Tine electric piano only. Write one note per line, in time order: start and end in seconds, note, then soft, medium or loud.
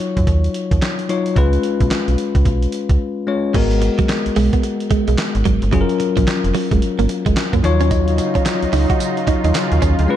0.00 1.05 F#3 medium
0.00 1.05 D#4 medium
0.00 1.06 F4 medium
0.00 1.06 C#5 medium
1.09 1.36 F#3 medium
1.09 1.36 D#4 medium
1.09 1.36 F4 medium
1.09 1.37 C#5 medium
1.36 3.23 G#3 medium
1.36 3.24 C#4 medium
1.36 3.24 F4 medium
1.36 3.24 B4 medium
3.27 3.53 G#3 medium
3.27 3.55 C#4 medium
3.27 3.55 F4 medium
3.27 3.55 C#5 medium
3.54 5.68 G#3 medium
3.54 5.69 B3 medium
3.54 5.69 F#4 medium
3.54 5.70 A#4 medium
5.72 7.59 F#3 medium
5.72 7.60 C#4 medium
5.72 7.60 F4 medium
5.72 5.82 G#4 medium
5.81 7.64 A#4 medium
7.63 7.71 F3 medium
7.63 9.78 D#4 medium
7.63 9.78 F4 medium
7.63 9.79 C#5 medium
7.69 9.81 F#3 medium
10.08 10.16 G#3 medium
10.08 10.16 C#4 medium
10.08 10.16 F4 medium
10.08 10.16 B4 medium